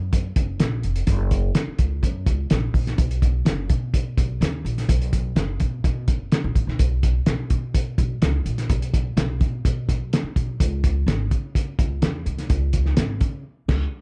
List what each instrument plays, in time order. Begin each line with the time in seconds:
Already playing: upright bass F#2
0.13 kick, closed hi-hat
0.36 upright bass F#1, kick, closed hi-hat
0.60 upright bass A#1, snare, closed hi-hat
0.83 upright bass F1, closed hi-hat
0.96 closed hi-hat
1.07 upright bass F#1, kick, closed hi-hat
1.31 kick, closed hi-hat
1.55 snare, closed hi-hat
1.67 muted upright bass stroke
1.79 upright bass C#2, kick, closed hi-hat
2.03 upright bass F#2, kick, closed hi-hat
2.26 upright bass C#2, kick, closed hi-hat
2.50 upright bass A#1, snare, closed hi-hat
2.74 upright bass A#1, kick, open hi-hat
2.87 snare, closed hi-hat
2.98 upright bass B1, kick, closed hi-hat
3.11 closed hi-hat
3.22 kick, closed hi-hat
3.45 upright bass F#1, snare, closed hi-hat
3.69 upright bass B2, kick, closed hi-hat
3.94 kick, closed hi-hat
4.17 upright bass B1, kick, closed hi-hat
4.41 upright bass D#2, snare, closed hi-hat
4.65 upright bass A#1, closed hi-hat
4.78 snare, closed hi-hat
4.89 upright bass B1, kick, closed hi-hat
5.02 closed hi-hat
5.13 kick, closed hi-hat
5.36 upright bass F#1, snare, closed hi-hat
5.60 upright bass B2, kick, closed hi-hat
5.84 upright bass B2, kick, closed hi-hat
6.08 upright bass F#1, kick, closed hi-hat
6.32 snare, closed hi-hat
6.44 upright bass A#1
6.55 upright bass A1, kick, closed hi-hat
6.67 upright bass A#1, snare
6.79 upright bass B1, kick, closed hi-hat
7.03 kick, closed hi-hat
7.26 upright bass B1, snare, closed hi-hat
7.50 upright bass B2, kick, closed hi-hat
7.74 kick, closed hi-hat
7.98 upright bass B1, kick, closed hi-hat
8.22 upright bass C#2, snare, closed hi-hat
8.46 upright bass A#1, closed hi-hat
8.58 snare, closed hi-hat
8.69 upright bass B1, kick, closed hi-hat
8.82 closed hi-hat
8.94 kick, closed hi-hat
9.17 upright bass B1, snare, closed hi-hat
9.40 upright bass B2, kick, closed hi-hat
9.65 upright bass B2, kick, closed hi-hat
9.89 upright bass B1, kick, closed hi-hat
10.13 snare, closed hi-hat
10.23 muted upright bass stroke
10.36 upright bass B1, kick, closed hi-hat
10.60 upright bass C#2, kick, closed hi-hat
10.84 kick, closed hi-hat
11.07 upright bass G#1, snare, closed hi-hat
11.31 upright bass C#3, kick, closed hi-hat
11.55 kick, closed hi-hat
11.79 upright bass C#2, kick, closed hi-hat
12.02 upright bass E2, snare, closed hi-hat
12.26 upright bass C2, closed hi-hat
12.38 snare, closed hi-hat
12.50 upright bass C#2, kick, closed hi-hat
12.73 kick, closed hi-hat
12.85 snare
12.97 upright bass G#1, snare, closed hi-hat
13.21 upright bass C#3, kick, closed hi-hat
13.68 upright bass C#2, kick, snare, crash